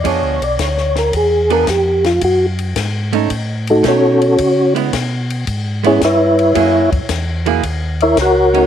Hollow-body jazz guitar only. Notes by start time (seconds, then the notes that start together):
0.04 F3 B3 D4 G#4
1.50 F3 B3 D4 G#4
3.13 A3 C#4 D#4
3.83 A3 C#4 D#4
4.75 G#3 B3 E4
5.83 G#3 B3 E4
6.55 F#3 A#3 E4 G#4
7.46 F#3 A#3 E4 G#4
8.54 A3 C#4 D#4